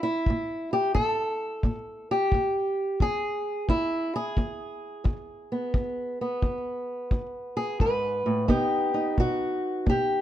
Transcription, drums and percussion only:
0.26 kick
0.95 kick
1.63 kick
2.32 kick
3.00 kick
3.69 kick
4.37 kick
5.05 kick
5.74 kick
6.42 kick
7.11 kick
7.80 kick
8.49 kick
9.18 kick
9.87 kick

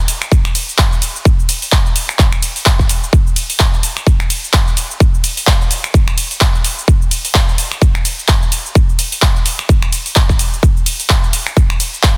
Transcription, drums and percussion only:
0.08 open hi-hat, ride, shaker
0.22 finger snap, shaker
0.32 kick, shaker
0.45 finger snap, shaker
0.55 open hi-hat, ride, shaker
0.69 shaker
0.78 kick, clap, shaker
0.93 shaker
1.02 open hi-hat, ride, shaker
1.16 shaker
1.25 kick, shaker
1.39 shaker
1.49 open hi-hat, ride, shaker
1.62 open hi-hat, shaker
1.72 kick, clap, shaker
1.86 shaker
1.96 open hi-hat, ride, shaker
2.09 finger snap, shaker
2.19 kick, clap, shaker
2.33 finger snap, shaker
2.42 open hi-hat, ride, shaker
2.56 open hi-hat, shaker
2.66 kick, clap, shaker
2.79 kick, shaker
2.89 open hi-hat, ride, shaker
3.03 shaker
3.13 kick, shaker
3.27 shaker
3.36 open hi-hat, ride, shaker
3.50 open hi-hat, shaker
3.60 kick, clap, shaker
3.74 shaker
3.83 open hi-hat, ride, shaker
3.97 finger snap, shaker
4.07 kick, shaker
4.20 finger snap, shaker
4.30 open hi-hat, ride, shaker
4.44 shaker
4.53 kick, clap, shaker
4.68 shaker
4.77 open hi-hat, ride, shaker
4.91 shaker
5.00 kick, shaker
5.14 shaker
5.24 open hi-hat, ride, shaker
5.37 open hi-hat, shaker
5.47 kick, clap, shaker
5.61 shaker
5.71 open hi-hat, ride, shaker
5.84 finger snap, shaker
5.94 kick, shaker
6.08 finger snap, shaker
6.18 open hi-hat, ride, shaker
6.31 open hi-hat, shaker
6.41 kick, clap, shaker
6.55 shaker
6.64 open hi-hat, ride, shaker
6.79 shaker
6.88 kick, shaker
7.02 shaker
7.11 open hi-hat, ride, shaker
7.25 open hi-hat, shaker
7.35 kick, clap, shaker
7.49 shaker
7.58 open hi-hat, ride, shaker
7.72 finger snap, shaker
7.82 kick, shaker
7.95 finger snap, shaker
8.05 open hi-hat, ride, shaker
8.19 shaker
8.28 kick, clap, shaker
8.43 shaker
8.52 open hi-hat, ride, shaker
8.66 shaker
8.75 kick, shaker
8.89 shaker
8.99 open hi-hat, ride, shaker
9.12 open hi-hat, shaker
9.22 kick, clap, shaker
9.36 shaker
9.46 open hi-hat, ride, shaker
9.59 finger snap, shaker
9.69 kick, shaker
9.82 finger snap, shaker
9.92 open hi-hat, ride, shaker
10.06 open hi-hat, shaker
10.16 kick, clap, shaker
10.29 kick, shaker
10.39 open hi-hat, ride, shaker
10.53 shaker
10.63 kick, shaker
10.77 shaker
10.86 open hi-hat, ride, shaker
11.00 open hi-hat, shaker
11.10 kick, clap, shaker
11.24 shaker
11.33 open hi-hat, ride, shaker
11.47 finger snap, shaker
11.57 kick, shaker
11.70 finger snap, shaker
11.80 open hi-hat, ride, shaker
11.94 shaker
12.03 kick, clap, shaker

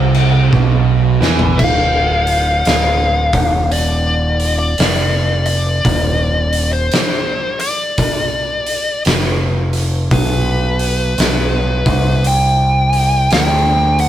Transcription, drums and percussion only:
0.14 crash
0.53 kick
1.22 snare
1.39 floor tom
1.59 kick, crash
2.27 open hi-hat
2.65 snare, open hi-hat
3.33 kick, open hi-hat
3.72 open hi-hat
4.40 open hi-hat
4.78 snare, open hi-hat
5.46 open hi-hat
5.85 kick, open hi-hat
6.53 open hi-hat
6.92 snare, open hi-hat
7.60 open hi-hat
7.98 kick, open hi-hat
8.66 open hi-hat
9.05 snare, open hi-hat
9.73 open hi-hat
10.11 kick, open hi-hat
10.79 open hi-hat
11.18 snare, open hi-hat
11.86 kick, open hi-hat
12.24 open hi-hat
12.93 open hi-hat
13.31 snare, open hi-hat
13.99 open hi-hat

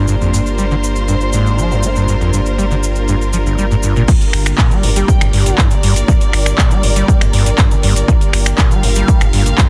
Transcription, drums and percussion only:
0.08 cabasa
0.21 cabasa
0.34 cabasa
0.46 cabasa
0.58 cabasa
0.71 cabasa
0.84 cabasa
0.96 cabasa
1.08 cabasa
1.21 cabasa
1.33 cabasa
1.46 cabasa
1.58 cabasa
1.72 cabasa
1.83 cabasa
1.96 cabasa
2.08 cabasa
2.21 cabasa
2.33 cabasa
2.46 cabasa
2.59 cabasa
2.71 cabasa
2.83 cabasa
2.96 cabasa
3.08 cabasa
3.22 cabasa
3.33 cabasa
3.46 cabasa
3.58 cabasa
3.71 cabasa
3.83 cabasa
3.96 cabasa
4.08 kick, crash, cabasa
4.21 closed hi-hat, cabasa
4.33 finger snap, open hi-hat
4.46 finger snap, closed hi-hat, cabasa
4.58 kick, clap, cabasa
4.71 closed hi-hat, cabasa
4.83 open hi-hat
4.96 closed hi-hat, cabasa
5.08 kick, cabasa
5.21 finger snap, closed hi-hat, cabasa
5.33 open hi-hat
5.46 closed hi-hat, cabasa
5.58 kick, clap, cabasa
5.71 closed hi-hat, cabasa
5.83 open hi-hat
5.96 closed hi-hat, cabasa
6.08 kick, cabasa
6.21 closed hi-hat, cabasa
6.33 finger snap, open hi-hat
6.46 finger snap, closed hi-hat, cabasa
6.58 kick, clap, cabasa
6.71 closed hi-hat, cabasa
6.83 open hi-hat
6.96 closed hi-hat, cabasa
7.08 kick, cabasa
7.21 finger snap, closed hi-hat, cabasa
7.33 open hi-hat
7.46 closed hi-hat, cabasa
7.58 kick, clap, cabasa
7.71 closed hi-hat, cabasa
7.83 open hi-hat
7.96 closed hi-hat, cabasa
8.08 kick, cabasa
8.21 closed hi-hat, cabasa
8.33 finger snap, open hi-hat
8.46 finger snap, cabasa
8.58 kick, clap, cabasa
8.71 closed hi-hat, cabasa
8.83 open hi-hat
8.95 closed hi-hat, cabasa
9.08 kick, cabasa
9.21 finger snap, closed hi-hat, cabasa
9.33 open hi-hat
9.46 closed hi-hat, cabasa
9.58 kick, clap, cabasa

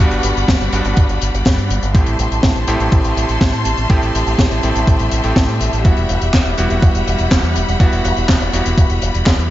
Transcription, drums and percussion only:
0.11 closed hi-hat
0.23 closed hi-hat
0.37 closed hi-hat
0.48 kick, snare, closed hi-hat
0.60 closed hi-hat
0.73 closed hi-hat
0.85 closed hi-hat
0.97 kick, closed hi-hat
1.09 closed hi-hat
1.21 closed hi-hat
1.34 closed hi-hat
1.45 kick, snare, closed hi-hat
1.58 closed hi-hat
1.70 closed hi-hat
1.83 closed hi-hat
1.95 kick, closed hi-hat
2.06 closed hi-hat
2.19 closed hi-hat
2.32 closed hi-hat
2.43 kick, snare, closed hi-hat
2.55 closed hi-hat
2.67 closed hi-hat
2.80 closed hi-hat
2.92 kick, closed hi-hat
3.04 closed hi-hat
3.17 closed hi-hat
3.29 closed hi-hat
3.41 kick, snare, closed hi-hat
3.53 closed hi-hat
3.65 closed hi-hat
3.78 closed hi-hat
3.89 kick, closed hi-hat
4.02 closed hi-hat
4.15 closed hi-hat
4.27 closed hi-hat
4.39 kick, snare, closed hi-hat
4.51 closed hi-hat
4.63 closed hi-hat
4.76 closed hi-hat
4.87 kick, closed hi-hat
4.99 closed hi-hat
5.11 closed hi-hat
5.24 closed hi-hat
5.36 kick, snare, closed hi-hat
5.49 closed hi-hat
5.61 closed hi-hat
5.73 closed hi-hat
5.85 kick, closed hi-hat
5.97 closed hi-hat
6.09 closed hi-hat
6.22 closed hi-hat
6.33 kick, snare, clap, closed hi-hat
6.45 closed hi-hat
6.58 closed hi-hat
6.70 closed hi-hat
6.82 kick, closed hi-hat
6.95 closed hi-hat
7.07 closed hi-hat
7.18 closed hi-hat
7.31 kick, snare, clap, closed hi-hat
7.44 closed hi-hat
7.56 closed hi-hat
7.68 closed hi-hat
7.80 kick, closed hi-hat
7.93 closed hi-hat
8.05 closed hi-hat
8.17 closed hi-hat
8.29 kick, snare, clap, closed hi-hat
8.40 closed hi-hat
8.53 closed hi-hat
8.66 closed hi-hat
8.78 kick, closed hi-hat
8.90 closed hi-hat
9.02 closed hi-hat
9.14 closed hi-hat
9.26 kick, snare, clap, closed hi-hat
9.39 closed hi-hat

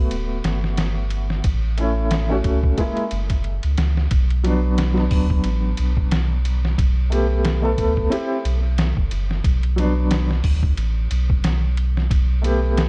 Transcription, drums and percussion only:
0.11 ride
0.44 snare, ride
0.64 snare
0.77 snare, ride
1.10 ride
1.30 snare
1.44 kick, ride
1.78 ride
2.11 snare, ride
2.44 kick, ride
2.63 kick
2.78 kick, ride
2.97 ride
3.11 ride
3.30 kick, ride
3.44 ride
3.63 ride
3.78 snare, ride
3.97 snare
4.11 kick, ride
4.30 ride
4.45 ride
4.78 snare, ride
4.98 snare
5.11 kick, open hi-hat
5.30 kick
5.44 ride
5.77 ride
5.97 kick
6.11 snare, ride
6.45 ride
6.65 snare
6.78 kick, ride
7.12 ride
7.45 snare, ride
7.78 kick, ride
7.97 kick
8.12 ride
8.45 ride
8.78 snare, ride
8.97 kick
9.11 ride
9.31 snare
9.44 kick, ride
9.63 ride
9.78 ride
10.11 snare, ride
10.31 snare
10.44 kick, open hi-hat
10.63 kick
10.77 ride
11.11 ride
11.30 kick
11.44 snare, ride
11.77 ride
11.97 snare
12.11 kick, ride
12.44 ride
12.78 snare, ride

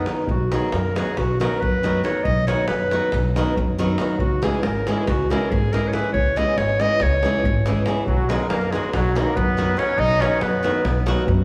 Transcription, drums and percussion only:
0.06 davul high
0.17 davul high
0.27 davul low
0.52 davul high
0.62 davul high
0.72 davul high
0.96 davul high
1.07 davul high
1.17 davul high, davul low
1.41 davul high
1.62 davul low
1.84 davul high
2.05 davul high
2.25 davul low
2.48 davul high
2.59 davul high
2.68 davul high
2.80 davul high
2.91 davul high
3.03 davul high
3.12 davul high, davul low
3.36 davul high
3.57 davul low
3.79 davul high
3.98 davul high
4.19 davul low
4.43 davul high
4.53 davul high
4.63 davul high
4.75 davul high
4.87 davul high
4.97 davul high
5.07 davul high, davul low
5.31 davul high
5.52 davul low
5.74 davul high
5.93 davul high
6.15 davul low
6.26 davul high
6.37 davul high
6.48 davul high
6.58 davul high
6.69 davul high
6.80 davul high
6.91 davul high
7.00 davul high, davul low
7.23 davul high
7.44 davul low
7.66 davul high
7.86 davul high
8.07 davul low
8.30 davul high
8.40 davul high
8.50 davul high
8.61 davul high
8.73 davul high
8.83 davul high
8.94 davul high, davul low
9.16 davul high
9.36 davul low
9.59 davul high
9.79 davul high
9.99 davul low
10.22 davul high
10.32 davul high
10.41 davul high
10.53 davul high
10.64 davul high
10.75 davul high
10.85 davul high, davul low
11.07 davul high
11.27 davul low

